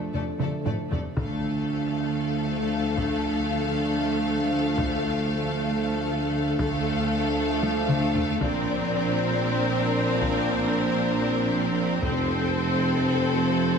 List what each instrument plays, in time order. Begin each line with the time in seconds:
Already playing: trombone section F3 A3, french horn section D4 A4
0.13 double bass section F1, tuba F1, cello section F2, viola section A3, violin section A4 D5, taiko low
0.39 double bass section F1, tuba F1, cello section F2, viola section A3, violin section A4 D5, taiko mid
0.64 double bass section F1, tuba F1, cello section F2, viola section A3, violin section A4 D5, taiko low-mid
0.90 double bass section F1, tuba F1, cello section F2, viola section A3, violin section A4 D5, taiko low
1.15 cello section D2, tuba D2, double bass section D2, trombone section F3 A3, viola section A3, french horn section D4 A4, violin section A4 F5, taiko
2.97 taiko
4.78 taiko
6.59 tuba D2, cello section D2, double bass section D2, trombone section F3 A3, viola section A3, french horn section D4 A4, violin section A4 F5, taiko
7.63 taiko high
7.88 taiko mid
8.15 taiko low
8.40 tuba A#1, double bass section A#1, cello section A#2, trombone section F3 A#3, viola section C4, french horn section D4 C5, violin section A#4 D5, taiko
10.21 taiko
12.02 tuba F1, double bass section F1, cello section F2, trombone section F3 A3, viola section C4, french horn section C4 C5, violin section A4 C5, taiko